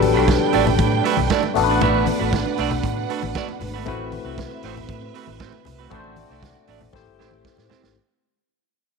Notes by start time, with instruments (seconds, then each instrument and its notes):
Already playing: fingered electric bass A1, tine electric piano F#3 G3 B3 D4 A4, string section D4 B4 G5
0.02 muted clean electric guitar stroke, open hi-hat, high conga
0.14 fingered electric bass B1, clean electric guitar A3 D4 F#4 B4
0.27 muted clean electric guitar stroke, kick, snare, closed hi-hat, high conga
0.40 muted clean electric guitar stroke
0.53 fingered electric bass A1, clean electric guitar A3 D4 F#4 D5, open hi-hat
0.67 muted clean electric guitar stroke, low conga
0.79 fingered electric bass A2, muted clean electric guitar stroke, kick, closed hi-hat, muted conga, high conga
0.92 muted clean electric guitar stroke, muted conga
1.04 clean electric guitar A3 D4 F#4 B4, open hi-hat
1.17 fingered electric bass B1, muted clean electric guitar stroke, high conga
1.30 clean electric guitar A3 D4 F#4 D5, kick, snare, closed hi-hat, muted conga
1.43 muted clean electric guitar stroke, muted conga
1.54 fingered electric bass A1, tine electric piano A3 B3 D4 F#4 A4, string section D4 B4 F#5, muted clean electric guitar stroke, open hi-hat, low conga
1.64 tine electric piano B4
1.70 clean electric guitar A3 D4 F#4 B4
1.81 clean electric guitar A3 D4 F#4 B4, kick, closed hi-hat, muted conga, low conga
1.94 muted conga
2.06 muted clean electric guitar stroke, open hi-hat, high conga
2.19 fingered electric bass A1, clean electric guitar A3 D4 F#4 B4
2.33 kick, snare, closed hi-hat, muted conga, high conga
2.46 muted clean electric guitar stroke, muted conga
2.58 fingered electric bass B1, clean electric guitar A3 D4 F#4 D5, open hi-hat
2.71 muted clean electric guitar stroke, low conga
2.83 fingered electric bass A2, muted clean electric guitar stroke, kick, closed hi-hat, high conga
2.97 muted clean electric guitar stroke, muted conga
3.10 clean electric guitar A3 D4 F#4 B4, open hi-hat
3.22 fingered electric bass A1, muted clean electric guitar stroke, high conga
3.35 clean electric guitar A3 D4 F#4 D5, kick, snare, closed hi-hat, muted conga
3.49 muted clean electric guitar stroke, muted conga
3.61 fingered electric bass G#1, muted clean electric guitar stroke, open hi-hat, low conga
3.74 clean electric guitar A3 D4 F#4 B4
3.85 fingered electric bass A1, tine electric piano A3 C4 E4 F#4 B4, clean electric guitar A3 C4 F#4 B4, string section C4 B4 E5, kick, closed hi-hat, muted conga, low conga
4.12 open hi-hat, high conga
4.25 fingered electric bass C2, clean electric guitar A3 C4 F#4 B4
4.38 muted clean electric guitar stroke, kick, snare, closed hi-hat, muted conga, high conga
4.50 muted clean electric guitar stroke, muted conga
4.63 fingered electric bass A1, clean electric guitar A3 C4 F#4 C5, open hi-hat
4.76 muted clean electric guitar stroke, low conga
4.89 fingered electric bass A2, muted clean electric guitar stroke, kick, closed hi-hat, muted conga, high conga
5.02 muted clean electric guitar stroke, muted conga
5.14 clean electric guitar A3 C4 F#4 B4, open hi-hat
5.27 fingered electric bass A1, muted clean electric guitar stroke, high conga
5.40 clean electric guitar A3 C4 F#4 C5, kick, snare, closed hi-hat
5.52 muted clean electric guitar stroke, muted conga
5.65 fingered electric bass C2, muted clean electric guitar stroke, open hi-hat, low conga
5.79 clean electric guitar A3 C4 F#4 B4
5.90 fingered electric bass A1, tine electric piano A3 C4 D4 F#4 B4, string section A3 F#4 D5, clean electric guitar A3 D4 F#4, kick, closed hi-hat, low conga
5.94 clean electric guitar C5
5.99 tine electric piano C5
6.04 muted conga
6.16 muted clean electric guitar stroke, open hi-hat, high conga
6.30 fingered electric bass C2, clean electric guitar A3 D4 F#4 C5
6.42 muted clean electric guitar stroke, kick, snare, closed hi-hat, muted conga, high conga
6.55 muted clean electric guitar stroke, muted conga
6.67 fingered electric bass A1, clean electric guitar A3 D4 F#4 D5, open hi-hat
6.81 muted clean electric guitar stroke, low conga
6.93 fingered electric bass A1, tine electric piano A3 C4 E4 G4 C5, string section A3 G4 C5, muted clean electric guitar stroke, kick, snare, muted conga, high conga
7.07 fingered electric bass G1, muted clean electric guitar stroke
7.19 fingered electric bass A1, clean electric guitar C4 E4 G4 C5, snare
7.31 fingered electric bass A1, muted clean electric guitar stroke, high conga
7.45 kick, snare
7.57 fingered electric bass A2, muted clean electric guitar stroke, snare, muted conga
7.69 clean electric guitar C4 E4 G4 C5, snare, low conga
7.83 fingered electric bass G#1, muted clean electric guitar stroke, snare